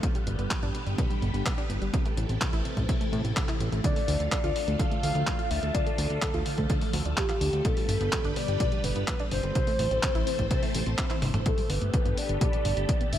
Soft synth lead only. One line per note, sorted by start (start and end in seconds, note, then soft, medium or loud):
3.84 4.28 D5 loud
4.32 4.81 D5 loud
4.79 5.02 F5 loud
5.03 5.52 F5 loud
5.50 5.75 E5 loud
5.74 6.23 D5 loud
6.22 6.70 A4 medium
7.17 7.67 G4 loud
7.65 8.38 A4 loud
8.37 8.60 D5 loud
8.61 8.86 D5 loud
8.85 9.08 B4 loud
9.09 9.19 B4 loud
9.32 11.19 C5 loud
11.47 11.72 A4 medium
11.70 12.20 B4 loud
12.18 12.41 D5 loud
12.42 13.09 D5 loud
13.13 13.18 E5 loud